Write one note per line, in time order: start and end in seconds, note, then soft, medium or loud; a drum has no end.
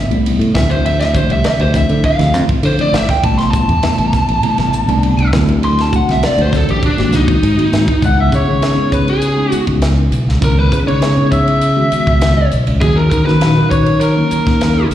0.09 0.36 C2 medium
0.09 0.46 C3 medium
0.09 0.46 G3 medium
0.09 0.46 A3 medium
0.09 0.47 B3 medium
0.09 0.46 E4 loud
0.09 ride medium
0.26 ride medium
0.39 0.52 A2 medium
0.39 ride medium
0.55 1.21 D2 medium
0.55 1.03 D3 medium
0.55 1.03 F3 medium
0.55 1.03 A3 medium
0.55 1.03 C4 medium
0.55 1.03 E4 medium
0.55 0.70 E5 loud
0.55 kick medium
0.55 snare medium
0.55 hi-hat pedal medium
0.70 0.84 C5 medium
0.70 ride medium
0.86 0.99 E5 medium
0.86 ride medium
1.00 1.14 E5 loud
1.00 snare soft
1.00 ride medium
1.14 1.51 D3 medium
1.14 1.51 F3 medium
1.14 1.51 A3 medium
1.14 1.51 C4 medium
1.14 1.51 G4 medium
1.14 1.30 C5 medium
1.14 kick medium
1.14 hi-hat pedal medium
1.30 1.43 C2 medium
1.30 1.44 E5 medium
1.30 ride medium
1.44 1.60 E5 medium
1.44 muted fingered electric bass stroke soft
1.44 snare loud
1.44 ride medium
1.59 1.85 D2 medium
1.59 1.74 C5 medium
1.59 ride medium
1.74 2.02 D3 medium
1.74 2.02 F3 medium
1.74 2.02 A3 medium
1.74 2.02 C4 medium
1.74 2.02 E4 medium
1.74 2.04 E5 medium
1.74 kick medium
1.74 snare soft
1.74 hi-hat pedal medium
1.89 2.02 D3 medium
1.89 ride medium
2.04 2.34 F5 loud
2.04 muted fingered electric bass stroke soft
2.04 kick medium
2.04 ride medium
2.19 2.34 D2 medium
2.19 2.55 D3 medium
2.19 2.55 F3 medium
2.19 2.55 A3 medium
2.19 2.56 C4 medium
2.19 2.56 E4 medium
2.19 snare soft
2.19 ride medium
2.34 2.47 F2 medium
2.34 snare soft
2.34 hi-hat pedal medium
2.49 muted fingered electric bass stroke soft
2.49 kick medium
2.49 ride medium
2.63 2.77 D3 loud
2.63 2.81 C5 medium
2.63 ride medium
2.78 3.06 D3 medium
2.78 3.06 F3 medium
2.78 3.06 A3 medium
2.78 3.07 C4 medium
2.78 3.06 E4 medium
2.78 2.95 D5 medium
2.78 muted fingered electric bass stroke soft
2.78 ride medium
2.93 3.07 A1 medium
2.93 3.09 E5 medium
2.93 snare loud
2.93 hi-hat pedal medium
3.09 3.24 G5 medium
3.09 kick medium
3.09 snare soft
3.09 ride medium
3.23 3.64 A1 medium
3.23 3.60 C3 medium
3.23 3.60 G3 medium
3.23 3.60 A3 medium
3.23 3.60 B3 medium
3.23 3.60 E4 medium
3.23 3.38 A5 medium
3.23 kick loud
3.23 ride medium
3.38 3.51 C6 medium
3.38 snare soft
3.38 ride medium
3.51 5.28 A5 loud
3.51 kick medium
3.51 hi-hat pedal medium
3.68 3.81 E2 medium
3.68 ride medium
3.83 4.20 C3 medium
3.83 4.20 G3 medium
3.83 4.20 A3 medium
3.83 4.20 B3 medium
3.83 4.20 E4 medium
3.83 snare loud
3.83 ride medium
3.98 4.12 A1 medium
3.98 ride medium
4.13 kick medium
4.13 snare soft
4.13 hi-hat pedal medium
4.28 4.41 A1 medium
4.28 ride medium
4.43 4.71 C3 medium
4.43 4.71 G3 medium
4.43 4.71 A3 medium
4.43 4.71 B3 medium
4.43 4.71 E4 medium
4.43 ride medium
4.58 4.85 A1 medium
4.58 snare soft
4.58 ride medium
4.73 hi-hat pedal medium
4.88 5.15 C2 medium
4.88 5.25 C3 medium
4.88 5.25 G3 medium
4.88 5.25 A3 medium
4.88 5.25 B3 medium
4.88 5.25 D4 loud
4.88 ride medium
5.03 ride medium
5.18 5.31 C2 loud
5.18 ride medium
5.33 5.99 D2 medium
5.33 5.81 D3 medium
5.33 5.81 F#3 medium
5.33 5.81 A3 medium
5.33 5.81 C4 medium
5.33 5.81 E4 loud
5.33 kick medium
5.33 snare loud
5.33 hi-hat pedal medium
5.49 ride medium
5.63 5.81 C6 loud
5.63 ride medium
5.79 5.96 A5 medium
5.79 snare soft
5.79 ride medium
5.92 6.29 D3 medium
5.92 6.29 F#3 medium
5.92 6.29 A3 medium
5.92 6.29 C4 medium
5.92 6.29 F#4 medium
5.92 6.09 F#5 medium
5.92 kick medium
5.92 hi-hat pedal medium
6.08 6.21 C2 medium
6.08 6.25 E5 medium
6.08 snare soft
6.08 ride medium
6.23 6.41 D5 medium
6.23 muted fingered electric bass stroke soft
6.23 snare loud
6.23 ride medium
6.38 6.64 D2 medium
6.38 6.54 C5 medium
6.38 ride medium
6.52 6.80 D3 medium
6.52 6.80 F#3 medium
6.52 6.80 A3 medium
6.52 6.80 C4 medium
6.52 6.80 D4 loud
6.52 kick medium
6.52 snare soft
6.52 hi-hat pedal medium
6.56 6.69 A4 medium
6.68 6.81 A1 medium
6.68 6.83 G4 medium
6.68 ride medium
6.83 7.13 D4 medium
6.83 muted fingered electric bass stroke soft
6.83 kick medium
6.83 ride medium
6.97 7.12 G#1 medium
6.97 7.34 D#3 medium
6.97 7.34 G#3 medium
6.97 7.34 A#3 medium
6.97 7.34 C4 medium
6.97 7.34 F#4 medium
6.97 snare soft
6.97 ride medium
7.12 7.26 C2 loud
7.12 8.01 D#4 loud
7.12 snare soft
7.12 hi-hat pedal medium
7.28 kick medium
7.28 ride medium
7.43 7.56 G#2 loud
7.43 ride loud
7.57 7.85 D#3 medium
7.57 7.85 G#3 medium
7.57 7.85 A#3 medium
7.57 7.85 C4 medium
7.57 7.85 F#4 medium
7.57 muted fingered electric bass stroke soft
7.57 ride medium
7.73 7.86 G#2 medium
7.73 snare loud
7.73 hi-hat pedal medium
7.88 kick medium
7.88 ride medium
8.02 8.29 C#2 medium
8.02 8.29 D#3 medium
8.02 8.29 G#3 medium
8.02 8.29 B3 medium
8.02 8.29 C#4 medium
8.02 8.30 E4 medium
8.02 8.21 F#6 medium
8.02 kick loud
8.02 hi-hat pedal medium
8.02 ride medium
8.06 8.20 F#5 medium
8.20 8.34 E5 medium
8.20 8.33 E6 medium
8.32 8.46 C#3 medium
8.32 8.93 C#5 medium
8.32 8.89 C#6 medium
8.32 kick medium
8.32 hi-hat pedal medium
8.32 ride medium
8.47 8.74 C#3 medium
8.47 8.56 D#3 medium
8.47 8.56 G#3 medium
8.47 8.56 B3 medium
8.47 8.56 C#4 medium
8.47 8.56 E4 medium
8.61 9.08 G#3 medium
8.61 9.08 B3 medium
8.61 9.08 C#4 medium
8.61 9.08 D#4 medium
8.61 9.08 E4 medium
8.61 snare loud
8.61 hi-hat pedal medium
8.61 ride medium
8.78 9.43 C#3 medium
8.92 9.07 B4 medium
8.92 9.07 B5 medium
8.92 kick medium
8.92 hi-hat pedal medium
8.92 ride medium
9.08 9.52 G#4 medium
9.08 9.51 G#5 medium
9.08 ride medium
9.22 hi-hat pedal medium
9.22 ride medium
9.37 10.01 G#3 medium
9.37 10.01 B3 medium
9.37 10.01 C#4 medium
9.37 10.01 D#4 medium
9.37 10.01 E4 medium
9.51 9.64 F#4 medium
9.51 9.64 F#5 medium
9.51 muted fingered electric bass stroke soft
9.51 hi-hat pedal medium
9.51 ride medium
9.67 10.07 C#2 medium
9.67 kick medium
9.67 ride medium
9.82 snare loud
9.82 hi-hat pedal medium
9.82 ride medium
10.11 10.25 B1 medium
10.11 hi-hat pedal medium
10.11 ride soft
10.27 10.40 C#2 medium
10.27 snare soft
10.41 10.68 C#2 medium
10.41 10.69 D#3 medium
10.41 10.69 G#3 medium
10.41 10.69 B3 medium
10.41 10.69 C#4 medium
10.41 10.69 E4 medium
10.41 10.59 A#4 medium
10.41 10.61 A#5 medium
10.41 kick loud
10.41 hi-hat pedal medium
10.41 ride medium
10.59 10.72 B4 medium
10.59 10.73 B5 medium
10.72 10.85 C#3 medium
10.72 10.78 B4 medium
10.72 10.82 B5 medium
10.72 kick medium
10.72 hi-hat pedal medium
10.72 ride medium
10.86 11.14 C#3 medium
10.86 10.96 D#3 medium
10.86 10.96 G#3 medium
10.86 10.96 B3 medium
10.86 10.96 C#4 medium
10.86 10.96 D#4 medium
10.86 11.32 C#5 medium
10.86 11.32 C#6 medium
10.86 ride soft
11.01 11.47 G#3 medium
11.01 11.47 B3 medium
11.01 11.47 C#4 medium
11.01 11.47 D#4 medium
11.01 11.47 E4 medium
11.01 snare loud
11.01 hi-hat pedal medium
11.01 ride medium
11.17 11.83 C#3 medium
11.31 12.47 E5 medium
11.31 12.48 E6 medium
11.31 kick medium
11.31 hi-hat pedal medium
11.31 ride medium
11.48 ride medium
11.61 hi-hat pedal medium
11.61 ride medium
11.77 12.41 D#3 medium
11.77 12.41 G#3 medium
11.77 12.41 B3 medium
11.77 12.41 C#4 medium
11.77 12.41 F#4 medium
11.92 muted fingered electric bass stroke soft
11.92 hi-hat pedal medium
11.92 ride medium
12.07 12.46 C#2 medium
12.07 kick medium
12.07 ride medium
12.21 snare loud
12.21 hi-hat pedal medium
12.21 ride medium
12.52 12.66 B1 medium
12.52 hi-hat pedal medium
12.52 ride medium
12.67 12.80 C#2 medium
12.67 ride medium
12.81 13.08 D#2 medium
12.81 13.09 D#3 medium
12.81 13.09 F#3 medium
12.81 13.09 A#3 medium
12.81 13.09 C#4 medium
12.81 13.09 F#4 medium
12.81 12.97 G#4 medium
12.81 12.96 G#5 medium
12.81 kick loud
12.81 hi-hat pedal medium
12.81 ride medium
12.96 13.09 A#4 medium
12.96 13.10 A#5 medium
13.10 13.25 D#3 medium
13.10 13.25 A#4 medium
13.10 13.26 A#5 medium
13.10 kick medium
13.10 hi-hat pedal medium
13.10 ride medium
13.26 13.35 D#3 medium
13.26 13.53 D#3 medium
13.26 13.35 F#3 medium
13.26 13.35 A#3 medium
13.26 13.35 C#4 medium
13.26 13.36 F#4 medium
13.26 13.68 B4 medium
13.26 13.68 B5 medium
13.26 snare soft
13.41 13.88 A#2 medium
13.41 13.87 D#3 medium
13.41 13.87 F#3 medium
13.41 13.88 C#4 medium
13.41 13.88 F#4 medium
13.41 snare loud
13.41 hi-hat pedal medium
13.41 ride medium
13.58 14.23 D#3 medium
13.71 14.00 C#5 medium
13.71 13.99 C#6 medium
13.71 kick medium
13.71 hi-hat pedal medium
13.71 ride medium
13.86 ride medium
14.01 14.87 A#4 medium
14.01 14.87 A#5 medium
14.01 hi-hat pedal medium
14.01 ride medium
14.17 14.81 D#3 medium
14.17 14.80 F#3 medium
14.17 14.80 A#3 medium
14.17 14.81 C#4 medium
14.17 14.81 D#4 medium
14.31 muted fingered electric bass stroke soft
14.31 hi-hat pedal medium
14.31 ride medium
14.47 14.86 D#2 medium
14.47 kick medium
14.47 snare soft
14.47 ride medium
14.61 snare loud
14.61 hi-hat pedal medium
14.61 ride medium
14.90 14.95 C#2 medium
14.90 hi-hat pedal medium
14.90 ride medium